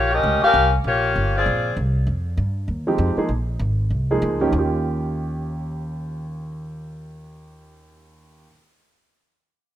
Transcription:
0.00 0.22 A#1 loud
0.00 0.12 A#3 medium
0.00 0.12 F4 medium
0.00 0.12 G4 medium
0.00 0.12 C#5 loud
0.13 0.42 C#4 medium
0.13 0.43 G4 medium
0.13 0.43 A#4 medium
0.13 0.43 D#5 loud
0.23 0.41 C#2 loud
0.42 0.71 C#4 medium
0.42 0.71 G4 loud
0.42 0.71 A#4 medium
0.42 0.71 F5 loud
0.42 muted upright bass stroke soft
0.54 0.83 C2 loud
0.84 1.14 A#1 medium
0.84 1.31 A#3 medium
0.84 1.32 F4 medium
0.84 1.31 G4 medium
0.84 1.31 C#5 loud
1.16 1.45 G1 medium
1.36 1.75 C4 medium
1.36 1.75 F4 medium
1.36 1.75 G#4 medium
1.36 1.75 D5 medium
1.46 1.75 A#1 medium
1.77 2.06 C2 loud
2.07 2.37 F2 medium
2.37 2.67 G2 medium
2.68 2.98 D#2 medium
2.87 3.16 F3 medium
2.87 3.16 G#3 medium
2.87 3.16 C4 medium
2.87 3.16 D#4 medium
2.87 3.16 G4 medium
2.98 3.16 F2 loud
3.17 3.28 F3 medium
3.17 3.28 G#3 medium
3.17 3.29 A#3 medium
3.17 3.29 D#4 medium
3.17 3.29 G#4 medium
3.17 muted upright bass stroke soft
3.29 3.59 A#1 medium
3.59 3.90 G#1 medium
3.90 4.21 C2 medium
4.11 4.39 F3 medium
4.11 4.39 G#3 medium
4.11 4.39 A#3 medium
4.11 4.39 D#4 medium
4.11 4.39 G#4 medium
4.22 4.52 C#2 loud
4.41 4.52 F3 medium
4.41 4.52 A#3 medium
4.41 4.52 C#4 medium
4.41 4.52 D#4 medium
4.41 4.52 G4 medium
4.47 8.46 D#2 medium
4.47 8.47 D#3 medium
4.52 8.44 D#2 loud
4.52 8.49 C#4 medium
4.52 8.50 F4 medium
4.59 8.52 G4 medium

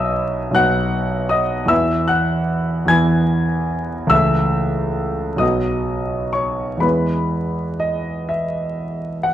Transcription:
0.00 0.50 B1 medium
0.00 0.51 F#3 soft
0.00 0.51 B3 soft
0.00 0.52 D#4 medium
0.00 1.31 D#5 medium
0.00 0.52 E5 medium
0.00 1.29 D#6 medium
0.00 0.55 E6 medium
0.51 1.65 B1 medium
0.51 1.65 F#3 soft
0.51 1.66 B3 soft
0.51 1.31 F#6 medium
0.56 1.67 D#4 soft
0.56 1.27 F#5 medium
1.29 1.68 D#5 medium
1.29 1.70 D#6 medium
1.66 2.84 E2 medium
1.66 2.84 E3 soft
1.66 2.85 B3 soft
1.66 2.86 E4 soft
1.66 2.07 E5 medium
1.66 2.09 E6 medium
2.08 2.85 F#5 medium
2.08 2.89 F#6 medium
2.86 4.06 E2 medium
2.86 4.07 E3 soft
2.86 4.07 B3 soft
2.86 4.07 G#5 medium
2.86 4.11 G#6 medium
2.90 4.08 E4 soft
4.07 5.35 C#2 medium
4.07 5.36 E3 soft
4.07 5.37 A3 soft
4.07 5.37 A4 soft
4.07 5.37 E5 medium
4.07 5.41 E6 medium
5.36 6.76 B1 medium
5.36 6.77 F#3 soft
5.36 6.77 B3 soft
5.36 6.78 F#4 soft
5.36 6.29 D#5 medium
5.36 6.32 D#6 medium
6.33 6.79 C#5 soft
6.33 6.82 C#6 medium
6.77 9.34 E2 soft
6.77 9.34 G#3 soft
6.77 9.34 B3 soft
6.77 9.26 B5 medium
6.82 9.34 E4 soft
6.82 9.23 B4 soft
7.80 8.29 D#5 medium
8.29 9.26 E5 medium
9.23 9.34 F#5 medium

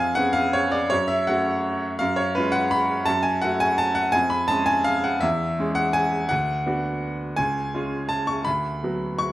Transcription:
0.00 0.16 F2 medium
0.00 0.16 G#5 loud
0.15 0.87 B3 medium
0.15 0.87 C#4 medium
0.15 0.87 G#4 medium
0.15 0.35 F#5 loud
0.33 0.53 F5 loud
0.53 0.73 C#5 loud
0.72 0.90 D5 loud
0.90 1.27 F#2 medium
0.90 1.09 C#5 loud
1.08 1.27 E5 loud
1.27 1.96 A3 medium
1.27 1.97 C#4 medium
1.27 1.97 F#4 medium
1.27 1.64 F#5 loud
1.99 2.35 F#2 medium
1.99 2.17 F5 loud
2.16 2.35 C#5 loud
2.35 3.04 G#3 medium
2.35 3.04 C#4 medium
2.35 3.04 F4 medium
2.35 2.54 B4 loud
2.52 2.71 F#5 loud
2.71 3.07 B5 loud
3.06 3.42 F#2 medium
3.06 3.24 A5 loud
3.23 3.42 G#5 loud
3.42 4.11 A3 medium
3.42 4.11 C#4 medium
3.42 4.12 F#4 medium
3.42 3.61 F#5 loud
3.60 3.79 G#5 loud
3.78 3.97 A5 loud
3.95 4.13 F#5 loud
4.12 4.49 F2 medium
4.12 4.31 G#5 loud
4.30 4.49 B5 loud
4.48 5.19 G#3 medium
4.48 5.20 C#4 medium
4.48 5.19 G#4 medium
4.48 4.67 A5 loud
4.66 4.86 G#5 loud
4.84 5.04 F5 loud
5.04 5.22 F#5 loud
5.21 5.57 E2 medium
5.21 5.75 E5 loud
5.59 6.26 G#3 medium
5.59 6.26 C#4 medium
5.59 6.27 G#4 medium
5.75 5.94 F#5 loud
5.93 6.29 G#5 loud
6.29 6.65 D2 medium
6.29 7.37 F#5 loud
6.66 7.34 B3 medium
6.66 7.34 D4 medium
6.66 7.34 F#4 medium
7.36 7.72 C#2 medium
7.36 8.10 G#5 loud
7.74 8.43 G#3 soft
7.74 8.44 C#4 soft
7.74 8.44 F4 medium
8.09 8.28 A5 loud
8.27 8.46 C#6 loud
8.45 8.82 D2 medium
8.45 9.19 B5 loud
8.83 9.32 F#3 soft
8.83 9.32 B3 soft
8.83 9.32 F#4 soft
9.19 9.32 C#6 loud

